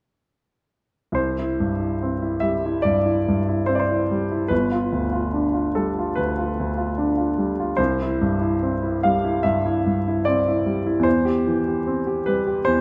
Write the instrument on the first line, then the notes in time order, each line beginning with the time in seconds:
grand piano
1.12 C2 C5
1.39 E4
1.60 G2
1.80 E4
2.03 C4
2.22 E4
2.40 G3 E5
2.66 E4
2.82 G2 D5
3.06 E4
3.28 G2
3.48 E4
3.66 C4 C5
3.75 D5
3.80 C5
3.91 E4
4.11 G3
4.31 E4
4.48 G1 B4
4.72 F4
4.92 D2
5.13 F4
5.33 D4
5.54 F4
5.75 G3 A4
5.99 F4
6.15 D2 B4
6.38 F4
6.60 D2
6.77 F4
6.98 D4
7.17 F4
7.38 G3
7.60 F4
7.77 C2 C5
8.02 E4
8.22 G2
8.41 E4
8.63 C4
8.83 E4
9.03 G3 F5
9.24 E4
9.43 G2 E5
9.65 E4
9.86 G2
10.08 E4
10.25 C4 D5
10.48 E4
10.66 G3
10.86 E4
10.99 E2
11.03 C5
11.25 G4
11.47 E3
11.68 G4
11.87 C4
12.07 G4
12.26 G3 B4
12.47 G4
12.65 E2 C5